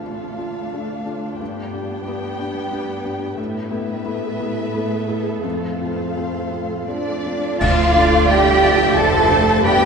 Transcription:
Already playing: cello section D2, felt piano D2 D4 F4, viola section A3 D4, violin section A4 F5
0.06 felt piano A3 D4 F4
0.38 felt piano D4 F4
0.74 felt piano A3 D4 F4
1.05 felt piano D4 F4
1.40 felt piano G2, cello section G2, viola section B3, violin section G4 G5
1.73 felt piano D4 G4
2.07 felt piano B3 D4 G4
2.39 felt piano D4 G4
2.71 felt piano B3 D4 G4
3.05 felt piano D4 G4
3.38 felt piano A2, cello section A2, viola section A3 A4, violin section B4 E5
3.71 felt piano B3 E4
4.05 felt piano A3 B3 E4
4.40 felt piano B3 E4
4.74 felt piano A3 B3 E4
5.08 felt piano B3 E4
5.44 felt piano F2, cello section F2, violin section C5 F5
5.81 felt piano C4 F4
6.17 felt piano A3 C4 F4
6.52 felt piano C4 F4
6.88 felt piano A3 C4 F4, cello section D4, flute section D5, violin section D5
7.26 felt piano C4 F4
7.59 double bass section D2, felt piano D2, viola section F3 D5, french horn section A3 D4, cello section F4, clarinet D5, flute section F5, violin section F5, oboe A5, concert bass drum, crash
7.95 viola section A3, felt piano D4, clarinet D5, oboe A5
8.28 felt piano A2, viola section G3, cello section G4, clarinet D5, violin section E5 G5, flute section G5, oboe A5
8.62 viola section F3, felt piano D4, clarinet D5, oboe A5
8.96 double bass section F1, felt piano A2, viola section F3 C5, cello section A4, clarinet D5, flute section A5, oboe A5, violin section A5
9.29 viola section A3, felt piano D4, clarinet D5, oboe A5
9.63 double bass section G1, felt piano G2, french horn section B3, viola section B3 B4, cello section G4, clarinet D5, violin section D5 G5, flute section G5, oboe B5

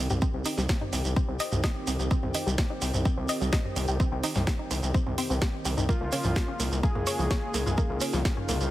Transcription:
Already playing: analog synth pad D#3 C4 G4, ambient pad F4 A#4 D#5 G5
0.10 analog synth bass C2, synth arpeggio sound G4, mid tom, shekere
0.21 synth arpeggio sound C4, kick, shekere
0.34 analog synth bass C2, synth arpeggio sound C4
0.45 synth arpeggio sound D#4, open hi-hat, shekere
0.57 analog synth bass C2, synth arpeggio sound G3, snare, shekere
0.69 synth arpeggio sound G4, kick, snare, shekere
0.81 synth arpeggio sound D#4, mid tom
0.93 analog synth bass C2, synth arpeggio sound C4, open hi-hat, shekere
1.05 analog synth bass C2, shekere
1.16 synth arpeggio sound C4, kick, shekere
1.28 analog synth bass C2, synth arpeggio sound C4
1.40 synth arpeggio sound D#5, open hi-hat, shekere
1.52 analog synth bass C2, synth arpeggio sound G3, mid tom, shekere
1.63 synth arpeggio sound D#5, kick, snare, shekere
1.87 analog synth bass C2, synth arpeggio sound C4, open hi-hat, shekere
1.99 analog synth bass C2, synth arpeggio sound G4, shekere
2.11 synth arpeggio sound C4, kick, shekere
2.23 analog synth bass C2, synth arpeggio sound C4, mid tom
2.34 synth arpeggio sound D#4, open hi-hat, shekere
2.47 analog synth bass C2, synth arpeggio sound G3, shekere
2.58 synth arpeggio sound G4, kick, snare, shekere
2.70 synth arpeggio sound D#4
2.82 analog synth bass C2, synth arpeggio sound C4, open hi-hat, shekere
2.94 analog synth bass C2, mid tom, shekere
3.05 synth arpeggio sound C4, kick, shekere
3.17 analog synth bass C2, synth arpeggio sound C4
3.29 synth arpeggio sound D#5, open hi-hat, shekere
3.41 analog synth bass C2, synth arpeggio sound G3, shekere
3.52 synth arpeggio sound D#5, kick, snare, shekere
3.65 mid tom
3.76 analog synth bass C2, synth arpeggio sound C4, open hi-hat, shekere
3.88 analog synth bass C2, synth arpeggio sound G4, shekere
4.00 synth arpeggio sound C4, kick, shekere
4.12 analog synth bass C2, synth arpeggio sound C4
4.24 synth arpeggio sound D#4, open hi-hat, shekere
4.35 analog synth bass C2, synth arpeggio sound G3, snare, mid tom, shekere
4.47 synth arpeggio sound G4, kick, snare, shekere
4.59 synth arpeggio sound D#4
4.71 analog synth bass C2, synth arpeggio sound C4, open hi-hat, shekere
4.83 analog synth bass C2, shekere
4.94 synth arpeggio sound C4, kick, shekere
5.06 analog synth bass C2, synth arpeggio sound C4, mid tom
5.18 synth arpeggio sound C4, open hi-hat, shekere
5.30 analog synth bass C2, synth arpeggio sound C4, shekere
5.41 synth arpeggio sound G4, kick, snare, shekere
5.65 analog synth bass C2, synth arpeggio sound G4, open hi-hat, shekere
5.77 analog synth bass C2, synth arpeggio sound D#4, mid tom, shekere
5.89 analog synth pad C#3 A#3 F4, synth arpeggio sound A#3, ambient pad D#4, analog synth lead F4, kick, shekere
6.01 analog synth bass C2, synth arpeggio sound A#3
6.12 synth arpeggio sound C#4, open hi-hat, shekere
6.18 ambient pad C#5
6.24 analog synth bass C2, synth arpeggio sound F3, ambient pad G#4, mid tom, shekere
6.31 ambient pad F5
6.35 synth arpeggio sound G4, kick, snare, shekere
6.48 synth arpeggio sound C#4
6.60 analog synth bass C2, synth arpeggio sound A#3, open hi-hat, shekere
6.72 analog synth bass C2, shekere
6.83 synth arpeggio sound A#3, analog synth lead G#4, kick, shekere
6.95 analog synth bass C2, synth arpeggio sound A#3, mid tom
7.07 synth arpeggio sound C#5, open hi-hat, shekere
7.19 analog synth bass C2, synth arpeggio sound F3, shekere
7.31 synth arpeggio sound C#5, kick, snare, shekere
7.54 analog synth bass C2, synth arpeggio sound A#3, open hi-hat, shekere
7.66 analog synth bass C2, synth arpeggio sound F4, mid tom, shekere
7.78 synth arpeggio sound A#3, kick, shekere
7.90 analog synth bass C2, synth arpeggio sound A#3
8.01 synth arpeggio sound C#4, open hi-hat, shekere
8.13 analog synth bass C2, synth arpeggio sound F3, snare, shekere
8.25 synth arpeggio sound G4, kick, snare, shekere
8.37 synth arpeggio sound C#4, mid tom
8.49 analog synth bass C2, synth arpeggio sound A#3, open hi-hat, shekere
8.61 analog synth bass C2, shekere

